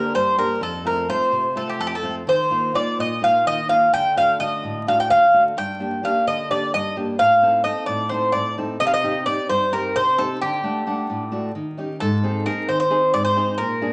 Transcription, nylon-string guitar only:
Already playing: D3 A#3 D4 G4
0.14 G2
0.37 A#3 D4 G4
0.61 F2
0.85 A3 C4 F4
1.08 A3 C4 F4
1.32 C3
1.56 A3 C4 F4
1.79 F2
2.03 A3 C4 F4
2.27 D#3
2.50 A#3 D#4 F4
2.74 A#3 D#4 F4
2.98 A#2
3.21 A#3 D#4 F4
3.46 D#3
3.68 A#3 D#4 F4
3.93 D3
4.16 A3 D4 F#4
4.39 D3 A3 F#4
4.64 A2
4.87 A3 D4 F#4
5.11 D3
5.33 A3 D4 F#4
5.57 G2
5.80 A#3 D4 G4
6.03 A#3 D4 G4
6.27 D3
6.50 A#3 D4 G4
6.73 G2
6.96 A#3 D4 G4
7.20 A2
7.42 C4 D#4 A4
7.65 C4 D#4 A4
7.88 A2
8.11 C4 D#4 A4
8.35 A2
8.58 C4 D#4 A4
8.81 C3
9.03 C4 D#4 G4
9.26 C4 D#4 G4
9.49 G2
9.72 C4 D#4 G4
9.96 C3
10.18 C4 D#4 G4
10.42 D3
10.63 A3 D4 F#5
10.86 A3 D4 F#5
11.10 A2
11.32 A3 D4 F#4
11.55 D#3
11.77 C#4 D#4 G4
12.01 G#2
12.23 C4 D#4 G#4
12.46 C4 D#4 G#4
12.69 D#3
12.90 C4 D#4 G#4
13.14 G#2
13.36 C4 D#4 G#4
13.59 A#2
13.81 A#3 D4 G#4

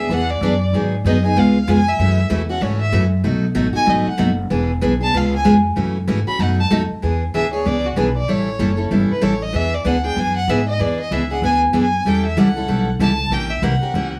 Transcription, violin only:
Already playing: E5
0.13 F#5
0.31 D5
1.07 D#5
1.26 G#5
1.40 F5
1.70 G#5
1.89 E5
2.50 F#5
2.63 C#5
2.81 E5
3.76 G#5
3.90 D#5
4.08 F#5
5.04 A5
5.17 F5
5.36 G#5
6.28 B5
6.42 F#5
6.60 A5
7.35 E5
7.54 C#5
7.67 D5
7.86 F#4
7.97 B4
8.17 D5
8.29 C#5
9.11 B4
9.23 C#5
9.42 D#5
9.55 E5
9.74 D5
9.87 F#5
10.06 G5
10.19 G#5
10.37 F#5
10.49 E5
10.69 D#5
10.81 D5
11.00 D#5
11.13 E5
11.32 F#5
11.45 G#5
11.77 G#5
12.08 G5
12.26 E5
12.38 F#5
13.02 A5
13.33 G5
13.50 E5
13.63 F#5

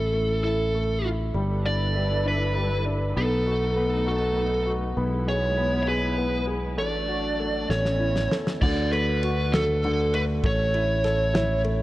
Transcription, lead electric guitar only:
Already playing: A4
0.44 A4
1.66 D5
2.28 B4
3.17 A4
4.08 A4
5.28 C#5
5.83 C#5
5.88 B4
6.79 D5
7.70 C#5
8.62 D5
8.92 B4
9.53 A4
10.15 B4
10.46 C#5

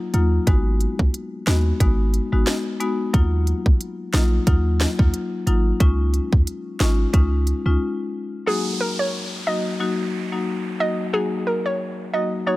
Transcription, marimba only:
0.13 F#3 A#3 D#4 F4
0.47 G#3 B3 D#4 F#4
1.47 G#3 B3 D#4 F#4
1.80 G#3 B3 D#4 F#4
2.32 G#3 B3 D#4 F#4
2.80 G#3 B3 D#4 F#4
3.13 F#3 A#3 D#4 F4
4.13 F#3 A#3 D#4 F4
4.47 F#3 A#3 D#4 F4
4.99 F#3 A#3 D#4 F4
5.47 F#3 A#3 D#4 F4
5.80 G#3 C#4 D#4 F4
6.80 G#3 C#4 D#4 F4
7.13 G#3 C#4 D#4 F4
7.66 G#3 C#4 D#4 F4
8.46 F#3 A#3 D#4 F#4
9.47 F#3 A#3 D#4 F#4
9.80 F#3 A#3 D#4 F#4
10.32 F#3 A#3 D#4 F#4
10.80 F#3 A#3 D#4 F#4
11.13 F#3 A#3 D#4 F#4
12.14 F#3 A#3 D#4 F#4
12.47 F#3 A#3 D#4 F#4

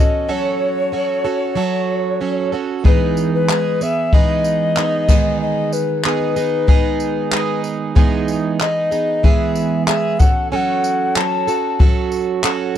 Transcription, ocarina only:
Already playing: D#5
0.31 C#5
2.86 B4
3.35 B4
3.82 E5
4.14 D#5
5.41 D#5
5.73 B4
6.06 B4
8.61 D#5
9.24 E5
9.87 E5
10.19 F#5
10.51 G#5
10.56 F#5
11.16 A5

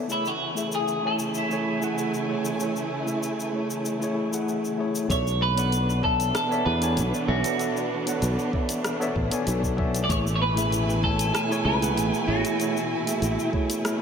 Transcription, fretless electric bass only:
5.10 B1
6.66 E2
6.97 B1
7.28 B1
8.22 B1
9.16 A1
9.47 B1
10.09 A1
11.65 C#2
11.97 A1
12.28 A1
13.22 A1

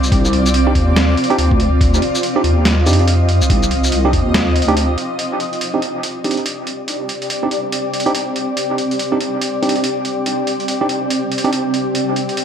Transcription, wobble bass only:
Already playing: C2
0.75 D#2
1.38 D2
2.44 D#2
2.86 F2
3.42 C2
4.13 D#2
4.55 D2

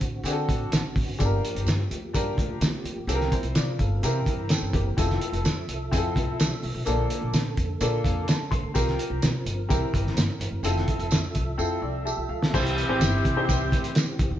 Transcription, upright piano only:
0.25 C4 D4 F#4 G#4
0.32 A4
1.18 D4 F4 G4 A4
1.25 A#4
2.13 D4 F4 G4 A#4
3.08 C4 F4 G4 A4
3.15 A#4
3.33 E4 C5
3.56 F4 D5
3.80 A4 F5
4.04 C4 E4 G4 A#4
4.50 C4 A4
4.74 A#3 G4
4.97 C4 E4 F4 A4
5.91 C4 E4 F4 G#4
5.97 A4
6.85 A#3 D4 F4 A4
7.81 A#3 D4 F4 A4
8.04 F5
8.27 A5
8.51 C6
8.74 C4 F4 G4 A#4
9.69 C4 E4 G4 A#4
10.64 C4 E4 F4 A4
11.58 C4 E4 F4 A4
11.82 F4 D5
12.05 G4 E5 A5
12.29 A4 F5
12.53 C4 E4 G4 C5
12.89 C4 E4 G4 C5
13.36 C4 D#4 G4 C5
13.42 E4

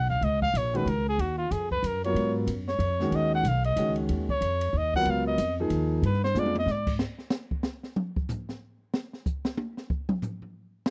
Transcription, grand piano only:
0.73 D#3 G#3 C#4 F#4
2.05 F#3 B3 F4 A#4
3.01 D#3 G#3 C#4 F#4
3.78 D#3 G#3 C#4 F#4
4.95 F#3 B3 F4 A#4
5.60 F3 A#3 D#4 G#4
6.35 G#3 B3 D4 F4

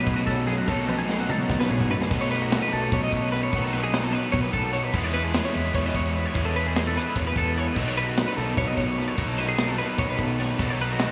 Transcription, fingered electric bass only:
0.07 B1
0.27 B1
0.68 B1
1.49 B1
1.71 B1
2.11 B1
2.73 B1
2.92 B1
3.13 B1
3.53 B1
4.34 B1
4.54 B1
4.93 E2
5.55 E2
5.75 E2
5.95 E2
6.35 E2
7.16 E2
7.37 E2
7.77 B1
8.38 B1
8.58 B1
8.78 B1
9.18 B1
9.99 B1
10.19 B1
10.60 B1

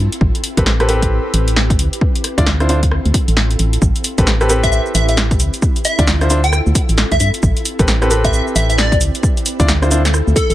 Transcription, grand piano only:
0.57 C4 G4 A4 B4
0.80 C4 G4 A4 B4
0.89 C4 G4 A4 B4
2.38 D4 E4 F4 D5
2.60 D4 E4 F4 C5
2.69 D4 E4 F4 C5
4.18 C4 G4 A4 B4
4.41 C4 G4 A4 B4
4.49 C4 G4 A4 B4
5.99 D4 E4 F4 D5
6.21 D4 E4 F4 C5
6.30 D4 E4 F4 C5
7.79 C4 G4 A4 B4
8.02 C4 G4 A4 B4
8.10 C4 G4 A4 B4
9.60 D4 E4 F4 D5
9.82 D4 E4 F4 C5
9.91 D4 E4 F4 C5

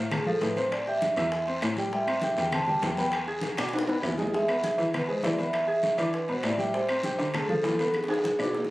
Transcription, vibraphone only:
0.12 G#4
0.27 A4
0.42 B4
0.58 C5
0.72 D5
0.88 E5
1.94 E5
2.40 G5
2.54 A5
2.85 G5
3.00 G5
3.15 G#5
3.61 G#5
4.35 E5
4.95 B4
5.09 C5
5.25 D5
5.39 E5
5.54 E5
6.13 B4
6.29 C5
6.44 D5
6.59 E5
6.73 C5
7.33 G#4
7.48 A4
7.63 A4
7.94 G#4

